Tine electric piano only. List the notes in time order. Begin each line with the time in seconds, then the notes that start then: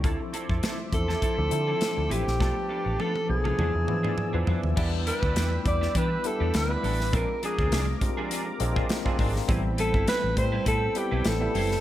0.03 F3 C4 D4 E4 A4
0.92 F3 C4 D4 E4 A4
1.37 F3 C4 D4 E4 A4
1.51 F3 C4 D4 E4 A4
1.96 F3 C4 D4 E4 A4
2.40 F3 A3 B3 D4 A4
3.28 F3 A3 B3 D4 A4
3.58 F3 B3 D4 E4 G#4
3.74 F3 B3 D4 E4 G#4
3.87 F3 B3 D4 E4 B4
4.18 G#5
4.33 F3 B3 D4 E4 B4
4.47 E5
4.76 G3 B3 D4 E4 B4
5.65 G3 B3 D4 E4 B4
6.24 G3 B3 D4 E4 B4
6.69 G3 B3 D4 E4 B4
7.12 G#3 C4 D4 F4 A#4
8.01 G#3 C4 D4 F4 G4
8.60 G#3 C4 D4 F4 A#4
9.05 G#3 C4 D4 F4 A#4
9.48 G3 B3 C4 E4 A4
10.37 G3 C4 E4 B4 C5
10.95 G3 B3 C4 E4 B4
11.41 G3 B3 C4 E4 A4